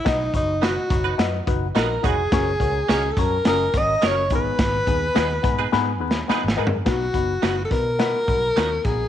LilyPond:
<<
  \new Staff \with { instrumentName = "Vibraphone" } { \time 4/4 \key b \major \tempo 4 = 106 r2. ais''8 gis''8~ | gis''4 gis''16. a''32 ais''8 ais''8 dis'''8 cis'''8 b''8~ | b''2. r4 | r1 | }
  \new Staff \with { instrumentName = "Tenor saxophone" } { \time 4/4 \key b \major dis'8 dis'8 fis'4. r8 ais'8 gis'8~ | gis'4 gis'16. a'32 ais'8 ais'8 dis''8 cis''8 b'8~ | b'2. r4 | fis'4~ fis'16. a'32 ais'2 gis'8 | }
  \new Staff \with { instrumentName = "Reed electric piano" } { \time 4/4 \key b \major <dis' fis' b' dis''>8 <dis' fis' b' cis''>8 <dis' fis' b' dis''>8 <dis' fis' b' cis''>8 <dis' fis' b' dis''>8 <dis' fis' b' fis''>8 <dis' fis' b' dis''>8 <dis' fis' b' cis''>8 | <cis' fis' ais' cis''>8 <cis' fis' ais' cis''>8 <cis' fis' ais' dis''>8 <cis' fis' ais' cis''>8 <cis' fis' ais' dis''>8 <cis' fis' ais' cis''>8 <cis' fis' ais' cis''>8 <b dis' gis' b'>8~ | <b dis' gis' b'>8 <b dis' gis' b'>8 <b dis' gis' b'>8 <b dis' gis' b'>8 <b dis' gis' b'>8 <b dis' gis' b'>8 <b dis' gis' b'>8 <b dis' gis' ais'>8 | <b dis' fis' b'>8 <b dis' fis' b'>8 <b dis' fis' b'>8 <b dis' fis' b'>8 <b dis' fis' b'>8 <b dis' fis' b'>8 <b dis' fis' cis''>8 <b dis' fis' ais'>8 | }
  \new Staff \with { instrumentName = "Reed electric piano" } { \clef bass \time 4/4 \key b \major b,4. r2 r8 | r2. r8 gis,8~ | gis,4 r2. | b,4. r2 r8 | }
  \new Staff \with { instrumentName = "Clean electric guitar" } { \time 4/4 \key b \major r4 <b dis' fis' b'>16 r8 <b dis' fis' b'>16 r4 <b dis' fis' b'>16 r16 <b dis' fis' b'>16 r16 | r4 <ais cis' fis' ais'>16 r4. r16 <ais cis' fis' ais'>16 r8. | r4 <b dis' gis' b'>16 r8 <b dis' gis' b'>16 r4 <b dis' gis' b'>16 r16 <b dis' gis' b'>16 r16 | r4 <b dis' fis' b'>16 r4. r16 <b dis' fis' b'>16 r8. | }
  \new Staff \with { instrumentName = "Fingered electric bass" } { \clef bass \time 4/4 \key b \major b,,8 fis,,4 fis,,8 fis,8 fis,,8 ais,,8 eis,,8 | fis,,8 cis,8 cis,8 fis,8 fis,,8 gis,,8 fis,,8 gis,,8 | gis,,8 dis,8 dis,8 gis,8 gis,8 dis,8 r16 gis,,16 gis,8 | b,,8 fis,,8 fis,,8 b,4 b,,8 dis,8 ais,,8 | }
  \new DrumStaff \with { instrumentName = "Drums" } \drummode { \time 4/4 <hh bd sn>8 <hh bd>8 <hh sn>8 <hh bd>8 <hh sn>8 <hh bd>8 <hh sn>8 <hh bd>8 | <hh bd sn>8 <hh bd>8 <hh sn>8 <hh bd>8 <hh sn>8 <hh bd sn>8 <hh sn>8 <hh bd>8 | <hh bd sn>8 <hh bd>8 <hh sn>8 <hh bd>8 \tuplet 3/2 { sn8 r8 sn8 sn8 sn8 tomfh8 } | <hh bd sn>8 <hh bd>8 <hh sn>8 <hh bd>8 <hh sn>8 <hh bd>8 <hh sn>8 <hh bd>8 | }
>>